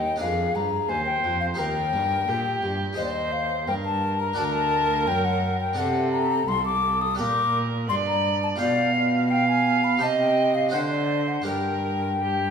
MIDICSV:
0, 0, Header, 1, 5, 480
1, 0, Start_track
1, 0, Key_signature, -2, "minor"
1, 0, Tempo, 694444
1, 143, Time_signature, 4, 2, 24, 8
1, 2543, Tempo, 703400
1, 5903, Tempo, 711744
1, 7343, Tempo, 733496
1, 8499, End_track
2, 0, Start_track
2, 0, Title_t, "Flute"
2, 0, Program_c, 0, 73
2, 0, Note_on_c, 0, 79, 90
2, 136, Note_off_c, 0, 79, 0
2, 140, Note_on_c, 0, 77, 90
2, 384, Note_on_c, 0, 82, 87
2, 394, Note_off_c, 0, 77, 0
2, 616, Note_on_c, 0, 80, 102
2, 626, Note_off_c, 0, 82, 0
2, 728, Note_off_c, 0, 80, 0
2, 732, Note_on_c, 0, 79, 87
2, 965, Note_off_c, 0, 79, 0
2, 969, Note_on_c, 0, 77, 93
2, 1011, Note_off_c, 0, 77, 0
2, 1087, Note_on_c, 0, 79, 110
2, 1886, Note_off_c, 0, 79, 0
2, 2054, Note_on_c, 0, 75, 85
2, 2096, Note_off_c, 0, 75, 0
2, 2102, Note_on_c, 0, 74, 75
2, 2147, Note_on_c, 0, 75, 89
2, 2157, Note_off_c, 0, 74, 0
2, 2296, Note_on_c, 0, 77, 91
2, 2307, Note_off_c, 0, 75, 0
2, 2538, Note_off_c, 0, 77, 0
2, 2542, Note_on_c, 0, 79, 98
2, 2583, Note_off_c, 0, 79, 0
2, 2659, Note_on_c, 0, 81, 101
2, 2898, Note_on_c, 0, 82, 95
2, 2909, Note_off_c, 0, 81, 0
2, 3020, Note_on_c, 0, 81, 106
2, 3031, Note_off_c, 0, 82, 0
2, 3066, Note_on_c, 0, 82, 87
2, 3076, Note_off_c, 0, 81, 0
2, 3117, Note_on_c, 0, 81, 109
2, 3128, Note_off_c, 0, 82, 0
2, 3495, Note_on_c, 0, 79, 110
2, 3506, Note_off_c, 0, 81, 0
2, 3614, Note_on_c, 0, 78, 94
2, 3624, Note_off_c, 0, 79, 0
2, 3853, Note_off_c, 0, 78, 0
2, 3857, Note_on_c, 0, 79, 85
2, 3971, Note_on_c, 0, 78, 91
2, 3981, Note_off_c, 0, 79, 0
2, 4205, Note_off_c, 0, 78, 0
2, 4209, Note_on_c, 0, 82, 98
2, 4454, Note_on_c, 0, 84, 100
2, 4464, Note_off_c, 0, 82, 0
2, 4568, Note_off_c, 0, 84, 0
2, 4572, Note_on_c, 0, 86, 105
2, 4819, Note_on_c, 0, 87, 102
2, 4829, Note_off_c, 0, 86, 0
2, 4934, Note_off_c, 0, 87, 0
2, 4938, Note_on_c, 0, 86, 110
2, 5202, Note_off_c, 0, 86, 0
2, 5417, Note_on_c, 0, 84, 106
2, 5458, Note_off_c, 0, 84, 0
2, 5539, Note_on_c, 0, 82, 89
2, 5776, Note_off_c, 0, 82, 0
2, 5785, Note_on_c, 0, 81, 85
2, 5825, Note_off_c, 0, 81, 0
2, 5900, Note_on_c, 0, 74, 98
2, 6131, Note_off_c, 0, 74, 0
2, 6135, Note_on_c, 0, 77, 84
2, 6376, Note_on_c, 0, 79, 99
2, 6386, Note_off_c, 0, 77, 0
2, 6493, Note_off_c, 0, 79, 0
2, 6497, Note_on_c, 0, 80, 93
2, 6738, Note_on_c, 0, 83, 89
2, 6748, Note_off_c, 0, 80, 0
2, 6846, Note_off_c, 0, 83, 0
2, 6850, Note_on_c, 0, 81, 94
2, 6890, Note_off_c, 0, 81, 0
2, 6974, Note_on_c, 0, 79, 83
2, 7215, Note_on_c, 0, 77, 79
2, 7225, Note_off_c, 0, 79, 0
2, 7332, Note_off_c, 0, 77, 0
2, 7336, Note_on_c, 0, 78, 90
2, 7375, Note_off_c, 0, 78, 0
2, 7451, Note_on_c, 0, 74, 81
2, 7698, Note_on_c, 0, 78, 69
2, 7708, Note_off_c, 0, 74, 0
2, 7814, Note_off_c, 0, 78, 0
2, 7818, Note_on_c, 0, 79, 86
2, 8499, Note_off_c, 0, 79, 0
2, 8499, End_track
3, 0, Start_track
3, 0, Title_t, "Violin"
3, 0, Program_c, 1, 40
3, 0, Note_on_c, 1, 63, 73
3, 136, Note_off_c, 1, 63, 0
3, 140, Note_on_c, 1, 68, 61
3, 614, Note_on_c, 1, 72, 69
3, 624, Note_off_c, 1, 68, 0
3, 1096, Note_on_c, 1, 70, 67
3, 1106, Note_off_c, 1, 72, 0
3, 1577, Note_on_c, 1, 67, 65
3, 1588, Note_off_c, 1, 70, 0
3, 2056, Note_off_c, 1, 67, 0
3, 2060, Note_on_c, 1, 72, 73
3, 2546, Note_on_c, 1, 70, 74
3, 2556, Note_off_c, 1, 72, 0
3, 3984, Note_on_c, 1, 69, 74
3, 3994, Note_off_c, 1, 70, 0
3, 4461, Note_off_c, 1, 69, 0
3, 4465, Note_on_c, 1, 69, 73
3, 4943, Note_on_c, 1, 70, 69
3, 4953, Note_off_c, 1, 69, 0
3, 5419, Note_off_c, 1, 70, 0
3, 5423, Note_on_c, 1, 74, 71
3, 5894, Note_off_c, 1, 74, 0
3, 5902, Note_on_c, 1, 77, 72
3, 6353, Note_off_c, 1, 77, 0
3, 6380, Note_on_c, 1, 77, 76
3, 6862, Note_on_c, 1, 75, 69
3, 6872, Note_off_c, 1, 77, 0
3, 7343, Note_on_c, 1, 72, 70
3, 7353, Note_off_c, 1, 75, 0
3, 7816, Note_off_c, 1, 72, 0
3, 7820, Note_on_c, 1, 70, 64
3, 8246, Note_off_c, 1, 70, 0
3, 8303, Note_on_c, 1, 67, 70
3, 8499, Note_off_c, 1, 67, 0
3, 8499, End_track
4, 0, Start_track
4, 0, Title_t, "Harpsichord"
4, 0, Program_c, 2, 6
4, 0, Note_on_c, 2, 39, 60
4, 0, Note_on_c, 2, 63, 47
4, 0, Note_on_c, 2, 67, 41
4, 0, Note_on_c, 2, 70, 45
4, 98, Note_off_c, 2, 63, 0
4, 103, Note_off_c, 2, 67, 0
4, 108, Note_off_c, 2, 70, 0
4, 110, Note_on_c, 2, 62, 49
4, 118, Note_off_c, 2, 39, 0
4, 119, Note_on_c, 2, 68, 43
4, 130, Note_on_c, 2, 70, 48
4, 141, Note_on_c, 2, 41, 55
4, 358, Note_off_c, 2, 41, 0
4, 381, Note_on_c, 2, 43, 61
4, 596, Note_off_c, 2, 43, 0
4, 620, Note_on_c, 2, 39, 61
4, 834, Note_off_c, 2, 39, 0
4, 859, Note_on_c, 2, 41, 57
4, 1052, Note_off_c, 2, 62, 0
4, 1057, Note_off_c, 2, 68, 0
4, 1062, Note_off_c, 2, 70, 0
4, 1065, Note_on_c, 2, 63, 57
4, 1073, Note_off_c, 2, 41, 0
4, 1074, Note_on_c, 2, 67, 52
4, 1085, Note_on_c, 2, 70, 53
4, 1096, Note_on_c, 2, 39, 60
4, 1311, Note_off_c, 2, 39, 0
4, 1337, Note_on_c, 2, 43, 58
4, 1553, Note_off_c, 2, 43, 0
4, 1576, Note_on_c, 2, 46, 61
4, 1793, Note_off_c, 2, 46, 0
4, 1815, Note_on_c, 2, 43, 59
4, 2016, Note_off_c, 2, 63, 0
4, 2020, Note_off_c, 2, 67, 0
4, 2024, Note_on_c, 2, 63, 52
4, 2025, Note_off_c, 2, 70, 0
4, 2033, Note_off_c, 2, 43, 0
4, 2034, Note_on_c, 2, 67, 50
4, 2043, Note_on_c, 2, 72, 54
4, 2056, Note_on_c, 2, 39, 56
4, 2513, Note_off_c, 2, 39, 0
4, 2541, Note_on_c, 2, 43, 63
4, 2976, Note_off_c, 2, 63, 0
4, 2982, Note_off_c, 2, 67, 0
4, 2986, Note_off_c, 2, 72, 0
4, 2990, Note_on_c, 2, 62, 61
4, 2993, Note_off_c, 2, 43, 0
4, 3000, Note_on_c, 2, 66, 60
4, 3010, Note_on_c, 2, 74, 55
4, 3020, Note_on_c, 2, 38, 58
4, 3471, Note_off_c, 2, 38, 0
4, 3496, Note_on_c, 2, 42, 68
4, 3934, Note_off_c, 2, 62, 0
4, 3939, Note_off_c, 2, 66, 0
4, 3944, Note_off_c, 2, 74, 0
4, 3945, Note_on_c, 2, 62, 52
4, 3948, Note_off_c, 2, 42, 0
4, 3954, Note_on_c, 2, 69, 56
4, 3966, Note_on_c, 2, 74, 52
4, 3974, Note_on_c, 2, 48, 60
4, 4430, Note_off_c, 2, 48, 0
4, 4458, Note_on_c, 2, 36, 64
4, 4898, Note_off_c, 2, 62, 0
4, 4903, Note_off_c, 2, 69, 0
4, 4909, Note_off_c, 2, 74, 0
4, 4911, Note_on_c, 2, 62, 55
4, 4914, Note_off_c, 2, 36, 0
4, 4920, Note_on_c, 2, 67, 53
4, 4931, Note_on_c, 2, 74, 57
4, 4940, Note_on_c, 2, 46, 59
4, 5394, Note_off_c, 2, 46, 0
4, 5423, Note_on_c, 2, 43, 65
4, 5860, Note_off_c, 2, 62, 0
4, 5865, Note_off_c, 2, 67, 0
4, 5870, Note_off_c, 2, 74, 0
4, 5871, Note_on_c, 2, 65, 52
4, 5876, Note_off_c, 2, 43, 0
4, 5880, Note_on_c, 2, 67, 48
4, 5891, Note_on_c, 2, 74, 52
4, 5901, Note_on_c, 2, 47, 57
4, 6814, Note_off_c, 2, 65, 0
4, 6819, Note_off_c, 2, 67, 0
4, 6824, Note_off_c, 2, 74, 0
4, 6827, Note_on_c, 2, 63, 55
4, 6829, Note_off_c, 2, 47, 0
4, 6837, Note_on_c, 2, 67, 54
4, 6848, Note_on_c, 2, 72, 55
4, 6856, Note_on_c, 2, 48, 61
4, 7309, Note_on_c, 2, 62, 52
4, 7313, Note_off_c, 2, 63, 0
4, 7315, Note_off_c, 2, 48, 0
4, 7317, Note_on_c, 2, 66, 54
4, 7318, Note_off_c, 2, 67, 0
4, 7320, Note_off_c, 2, 72, 0
4, 7328, Note_on_c, 2, 72, 56
4, 7339, Note_on_c, 2, 50, 60
4, 7780, Note_off_c, 2, 62, 0
4, 7788, Note_on_c, 2, 62, 44
4, 7795, Note_off_c, 2, 50, 0
4, 7796, Note_off_c, 2, 66, 0
4, 7799, Note_on_c, 2, 67, 43
4, 7801, Note_off_c, 2, 72, 0
4, 7808, Note_on_c, 2, 70, 43
4, 7819, Note_on_c, 2, 43, 47
4, 8499, Note_off_c, 2, 43, 0
4, 8499, Note_off_c, 2, 62, 0
4, 8499, Note_off_c, 2, 67, 0
4, 8499, Note_off_c, 2, 70, 0
4, 8499, End_track
5, 0, Start_track
5, 0, Title_t, "Cello"
5, 0, Program_c, 3, 42
5, 0, Note_on_c, 3, 39, 68
5, 139, Note_off_c, 3, 39, 0
5, 143, Note_on_c, 3, 41, 77
5, 378, Note_off_c, 3, 41, 0
5, 384, Note_on_c, 3, 43, 62
5, 616, Note_off_c, 3, 43, 0
5, 621, Note_on_c, 3, 39, 76
5, 854, Note_off_c, 3, 39, 0
5, 860, Note_on_c, 3, 41, 74
5, 1092, Note_off_c, 3, 41, 0
5, 1099, Note_on_c, 3, 39, 71
5, 1337, Note_on_c, 3, 43, 78
5, 1347, Note_off_c, 3, 39, 0
5, 1577, Note_off_c, 3, 43, 0
5, 1580, Note_on_c, 3, 46, 75
5, 1814, Note_off_c, 3, 46, 0
5, 1821, Note_on_c, 3, 43, 77
5, 2056, Note_off_c, 3, 43, 0
5, 2062, Note_on_c, 3, 39, 75
5, 2545, Note_on_c, 3, 43, 76
5, 2555, Note_off_c, 3, 39, 0
5, 3018, Note_off_c, 3, 43, 0
5, 3022, Note_on_c, 3, 38, 77
5, 3497, Note_on_c, 3, 42, 89
5, 3507, Note_off_c, 3, 38, 0
5, 3972, Note_off_c, 3, 42, 0
5, 3976, Note_on_c, 3, 48, 84
5, 4448, Note_off_c, 3, 48, 0
5, 4458, Note_on_c, 3, 36, 71
5, 4940, Note_on_c, 3, 46, 79
5, 4950, Note_off_c, 3, 36, 0
5, 5421, Note_on_c, 3, 43, 83
5, 5431, Note_off_c, 3, 46, 0
5, 5896, Note_off_c, 3, 43, 0
5, 5900, Note_on_c, 3, 47, 76
5, 6854, Note_on_c, 3, 48, 71
5, 6864, Note_off_c, 3, 47, 0
5, 7341, Note_on_c, 3, 50, 76
5, 7351, Note_off_c, 3, 48, 0
5, 7818, Note_off_c, 3, 50, 0
5, 7822, Note_on_c, 3, 43, 75
5, 8499, Note_off_c, 3, 43, 0
5, 8499, End_track
0, 0, End_of_file